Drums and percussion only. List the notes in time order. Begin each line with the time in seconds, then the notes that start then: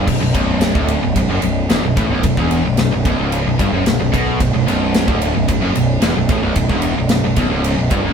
0.08 kick, crash
0.35 kick, ride
0.61 snare, ride
0.75 kick
0.88 ride
1.16 kick, ride
1.42 ride
1.70 snare, ride
1.97 kick, ride
2.23 kick, ride
2.37 kick
2.51 ride
2.77 snare, ride
3.05 kick, ride
3.32 ride
3.59 kick, ride
3.86 snare, ride
4.14 kick, ride
4.40 kick, ride
4.68 ride
4.94 snare, ride
5.08 kick
5.22 ride
5.48 kick, ride
5.75 ride
6.02 snare, ride
6.29 kick, ride
6.56 kick, ride
6.69 kick
6.82 ride
7.09 snare, ride
7.36 kick, ride
7.64 ride
7.91 kick, ride